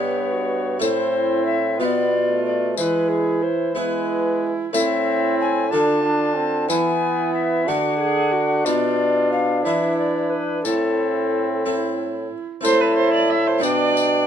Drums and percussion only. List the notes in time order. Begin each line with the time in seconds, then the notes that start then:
0.82 tambourine
2.77 tambourine
4.74 tambourine
6.70 tambourine
8.66 tambourine
10.65 tambourine
12.65 tambourine
13.63 tambourine
13.97 tambourine